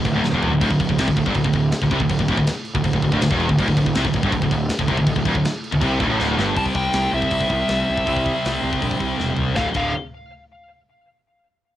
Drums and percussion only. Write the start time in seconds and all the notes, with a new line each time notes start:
0.05 kick, crash
0.24 snare
0.42 floor tom
0.61 kick, crash
0.70 kick
0.80 kick, crash
0.89 kick
0.98 snare, crash
1.08 kick
1.16 kick, crash
1.26 kick
1.34 kick, crash
1.44 kick
1.53 kick, crash
1.72 snare, crash
1.82 kick
1.91 kick, crash
2.00 kick
2.09 kick, crash
2.19 kick
2.28 kick, crash
2.37 kick
2.47 snare, crash
2.65 crash
2.75 kick
2.84 kick, crash
2.93 kick
3.02 kick, crash
3.12 kick
3.21 snare, crash
3.31 kick
3.40 crash
3.49 kick
3.59 kick, crash
3.68 kick
3.77 kick, crash
3.86 kick
3.95 snare, crash
4.05 kick
4.13 kick, crash
4.23 kick
4.32 kick, crash
4.42 kick
4.51 kick, crash
4.69 snare, crash
4.79 kick
4.88 kick, crash
4.97 kick
5.07 kick, crash
5.16 kick
5.25 kick, crash
5.35 kick
5.45 snare, crash
5.64 crash
5.72 kick
5.81 kick, crash
6.00 kick, crash
6.20 snare
6.39 snare
6.56 kick, open hi-hat
6.66 kick
6.75 kick
6.93 snare, open hi-hat
7.22 kick
7.31 kick, open hi-hat
7.41 kick
7.50 kick
7.68 snare, open hi-hat
7.97 kick
8.07 kick, open hi-hat
8.16 kick
8.26 kick
8.45 snare, open hi-hat
8.73 kick
8.82 kick, open hi-hat
8.91 kick
9.00 kick
9.20 snare
9.37 floor tom
9.56 kick, snare
9.74 kick, crash